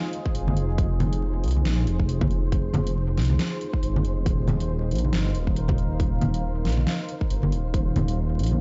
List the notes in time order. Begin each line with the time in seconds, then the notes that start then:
Already playing: D#4 F4 G#4 C5
0.13 closed hi-hat
0.26 kick
0.35 G#1, closed hi-hat
0.48 high conga
0.57 F1, closed hi-hat
0.78 F1, kick, closed hi-hat
1.00 closed hi-hat, high conga, low conga
1.13 closed hi-hat
1.44 C2, closed hi-hat
1.48 closed hi-hat
1.51 closed hi-hat
1.56 high conga
1.65 A#1, snare, closed hi-hat
1.87 F1, closed hi-hat
2.00 kick
2.09 closed hi-hat
2.21 kick, high conga
2.31 closed hi-hat
2.52 kick, closed hi-hat
2.74 closed hi-hat, high conga, low conga
2.87 closed hi-hat
3.17 C2, snare, closed hi-hat
3.22 closed hi-hat
3.25 closed hi-hat
3.30 high conga
3.39 snare, closed hi-hat
3.61 closed hi-hat
3.73 kick
3.83 G#1, closed hi-hat
3.96 high conga
4.04 F1, closed hi-hat
4.26 D#1 D#4 A#4 F5, kick, closed hi-hat
4.48 closed hi-hat, high conga, low conga
4.60 closed hi-hat
4.91 A#1, closed hi-hat
4.95 closed hi-hat
4.99 closed hi-hat
5.05 high conga
5.13 G1, snare, closed hi-hat
5.35 D#1, closed hi-hat
5.47 kick
5.56 closed hi-hat
5.68 kick, high conga
5.78 closed hi-hat
6.00 kick, closed hi-hat
6.21 closed hi-hat, high conga, low conga
6.34 closed hi-hat
6.65 A#1, snare, closed hi-hat
6.69 closed hi-hat
6.72 closed hi-hat
6.77 high conga
6.87 snare, closed hi-hat
7.09 closed hi-hat
7.21 kick
7.30 G1, closed hi-hat
7.43 high conga
7.52 D#1, closed hi-hat
7.74 D#1 C5, kick, closed hi-hat
7.96 closed hi-hat, high conga, low conga
8.08 closed hi-hat
8.39 A#1, closed hi-hat
8.44 closed hi-hat
8.47 closed hi-hat
8.52 high conga